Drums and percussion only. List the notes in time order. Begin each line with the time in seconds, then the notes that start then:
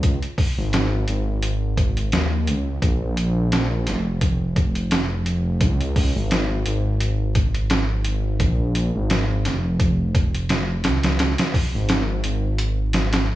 0.03 kick, closed hi-hat
0.23 closed hi-hat
0.38 kick, open hi-hat
0.73 snare, closed hi-hat
1.08 closed hi-hat
1.43 closed hi-hat
1.77 kick, closed hi-hat
1.97 closed hi-hat
2.12 snare, closed hi-hat
2.47 closed hi-hat
2.82 kick, closed hi-hat
3.17 closed hi-hat
3.52 snare, closed hi-hat
3.87 snare, closed hi-hat
4.21 kick, closed hi-hat
4.56 kick, closed hi-hat
4.75 closed hi-hat
4.91 snare, closed hi-hat
5.26 closed hi-hat
5.61 kick, closed hi-hat
5.81 closed hi-hat
5.96 kick, open hi-hat
6.31 snare, closed hi-hat
6.66 closed hi-hat
7.00 closed hi-hat
7.35 kick, closed hi-hat
7.55 closed hi-hat
7.70 snare, closed hi-hat
8.05 closed hi-hat
8.40 kick, closed hi-hat
8.75 closed hi-hat
9.10 snare, closed hi-hat
9.45 snare, closed hi-hat
9.80 kick, closed hi-hat
10.15 kick, closed hi-hat
10.35 closed hi-hat
10.49 snare, closed hi-hat
10.84 snare, closed hi-hat
11.03 snare, closed hi-hat
11.19 snare, closed hi-hat
11.38 snare, closed hi-hat
11.54 kick, open hi-hat
11.89 snare, closed hi-hat
12.24 closed hi-hat
12.58 closed hi-hat
12.93 snare, closed hi-hat
13.13 snare, closed hi-hat